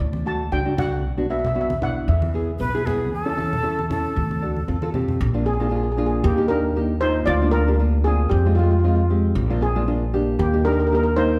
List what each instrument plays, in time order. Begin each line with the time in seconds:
Already playing: steel pan D5
0.00 upright bass D2
0.13 high conga
0.26 nylon-string guitar A3 D4 F#4, steel pan A5
0.52 upright bass C#2, nylon-string guitar A3 D4 F#4, steel pan G5
0.65 nylon-string guitar A3 D4 F#4
0.77 nylon-string guitar A3 D4 F#4, steel pan F#5, low conga
1.04 upright bass B1
1.17 nylon-string guitar B3 D4 F#4
1.29 nylon-string guitar B3 D4 F#4, steel pan E5
1.39 steel pan E5
1.45 steel pan E5, low conga
1.55 nylon-string guitar B3 D4 F#4, steel pan E5
1.61 steel pan E5
1.70 steel pan E5, high conga
1.82 nylon-string guitar B3 D4 E4, steel pan F#5, low conga
2.08 upright bass E2, steel pan E5
2.22 high conga
2.34 nylon-string guitar B3 E4 G#4
2.59 upright bass B1, nylon-string guitar B3 E4 B4, flute B4
2.74 nylon-string guitar B3 E4 G#4
2.86 nylon-string guitar B3 E4 G#4, flute G#4, low conga
3.12 upright bass E2, flute A4
3.25 nylon-string guitar C#4 E4 A4
3.37 nylon-string guitar C#4 E4 A4, high conga
3.53 low conga
3.63 nylon-string guitar C#4 E4 A4
3.79 high conga
3.90 nylon-string guitar C#4 E4 A4, flute A4, low conga
4.16 upright bass D2, high conga
4.31 high conga
4.42 nylon-string guitar D4 F#4 A4
4.56 high conga
4.68 upright bass F2, nylon-string guitar C4 F4 A4, high conga
4.82 nylon-string guitar C4 F4 A4, high conga
4.94 nylon-string guitar C4 F4 G4, low conga
5.08 low conga
5.21 upright bass A#1
5.34 nylon-string guitar A#3 D4 F4
5.46 steel pan C4 G#4
5.54 steel pan G#4
5.60 nylon-string guitar A#3 D4 F4, steel pan G#4
5.69 nylon-string guitar A#3 D4 F4, steel pan G#4
5.76 steel pan G#4
5.83 steel pan G#4
5.92 steel pan G#4
5.97 nylon-string guitar A#3 D4 F4, steel pan G#4
6.06 steel pan G#4
6.24 upright bass D#2, steel pan A#3 G4
6.37 nylon-string guitar A#3 D#4 G4
6.48 nylon-string guitar A#3 D#4 G4, steel pan D4 A#4
6.76 nylon-string guitar A#3 D#4 G4
7.01 nylon-string guitar A#3 D#4 F4, steel pan D#4 C5
7.26 upright bass D2, steel pan F4 D5
7.41 nylon-string guitar A#3 D4 F4
7.51 steel pan D4 A#4
7.67 nylon-string guitar A#3 D4 G4
7.79 nylon-string guitar A#3 D4 F4
8.04 nylon-string guitar A#3 D4 F4, steel pan C4 G#4
8.29 upright bass F2, steel pan C4 G4
8.45 nylon-string guitar G#3 C4 F4
8.55 steel pan G#3 F4, nylon-string guitar G#3 C4 F4
8.64 steel pan F4
8.71 steel pan F4
8.79 steel pan F4
8.84 nylon-string guitar G#3 C4 F4, steel pan F4
8.95 steel pan F4
9.10 nylon-string guitar G#3 C4 G4
9.35 upright bass A#1
9.50 nylon-string guitar A#3 D4 F4
9.61 steel pan C4 G#4
9.75 nylon-string guitar A#3 D4 F4
9.88 nylon-string guitar A#3 D4 F4
10.14 nylon-string guitar A#3 D4 G4
10.39 upright bass D#2, steel pan A#3 G4
10.53 nylon-string guitar A#3 D#4 G4
10.65 nylon-string guitar A#3 D#4 G4, steel pan D4 A#4
10.73 steel pan A#4
10.80 steel pan A#4
10.87 steel pan A#4
10.91 nylon-string guitar A#3 D#4 G4, steel pan A#4
11.03 steel pan A#4
11.16 nylon-string guitar A#3 D#4 A#4, steel pan D#4 C5